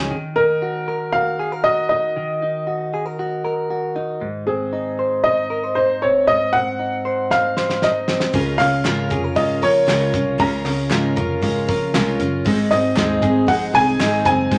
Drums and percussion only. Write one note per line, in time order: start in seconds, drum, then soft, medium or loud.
7.31 snare medium
7.57 snare medium
7.70 snare medium
7.82 snare medium
8.08 snare loud
8.20 snare loud
8.34 kick loud
8.34 open hi-hat loud
8.59 clap medium
8.59 hi-hat pedal medium
8.59 open hi-hat medium
8.85 snare loud
8.85 clap medium
8.85 hi-hat pedal medium
8.85 open hi-hat loud
9.10 kick loud
9.10 hi-hat pedal medium
9.10 open hi-hat medium
9.36 kick loud
9.36 hi-hat pedal medium
9.36 open hi-hat loud
9.62 hi-hat pedal medium
9.62 open hi-hat medium
9.88 snare loud
9.88 clap loud
9.88 hi-hat pedal medium
9.88 open hi-hat medium
10.14 kick loud
10.14 hi-hat pedal medium
10.14 open hi-hat medium
10.40 kick loud
10.40 hi-hat pedal medium
10.40 open hi-hat medium
10.66 clap medium
10.66 hi-hat pedal medium
10.66 open hi-hat medium
10.90 snare loud
10.90 clap medium
10.90 hi-hat pedal medium
10.90 open hi-hat loud
11.16 kick loud
11.16 hi-hat pedal medium
11.16 open hi-hat medium
11.43 kick loud
11.43 hi-hat pedal medium
11.43 open hi-hat loud
11.68 kick loud
11.68 hi-hat pedal medium
11.68 open hi-hat medium
11.94 snare loud
11.94 clap loud
11.94 hi-hat pedal medium
11.94 open hi-hat loud
12.20 hi-hat pedal medium
12.20 open hi-hat medium
12.46 kick loud
12.46 hi-hat pedal medium
12.46 open hi-hat medium
12.71 clap medium
12.71 hi-hat pedal medium
12.71 open hi-hat medium
12.96 snare loud
12.96 clap medium
12.96 hi-hat pedal medium
12.96 open hi-hat medium
13.22 kick loud
13.22 hi-hat pedal medium
13.22 open hi-hat medium
13.48 kick loud
13.48 hi-hat pedal medium
13.48 open hi-hat loud
13.74 snare soft
13.74 hi-hat pedal medium
13.74 open hi-hat medium
14.00 snare loud
14.00 clap loud
14.00 hi-hat pedal medium
14.00 open hi-hat medium
14.25 kick loud
14.25 hi-hat pedal medium
14.25 open hi-hat medium
14.52 kick loud
14.52 hi-hat pedal medium
14.52 open hi-hat medium